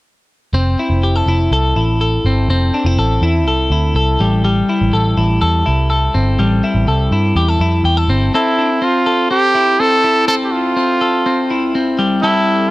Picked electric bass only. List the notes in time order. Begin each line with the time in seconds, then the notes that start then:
0.53 F1
0.90 F1
1.26 F1
1.51 C2
1.76 A1
2.25 G1
2.48 F1
2.85 F1
2.97 A1
3.21 E2
3.46 C2
3.70 D2
3.95 C2
4.20 A1
4.81 A1
4.93 A1
5.17 A1
5.42 E2
5.67 C2
6.15 G1
6.39 A1
6.75 A1
6.87 C2
7.11 G2
7.35 E2
7.60 F2
7.84 E2
8.08 G1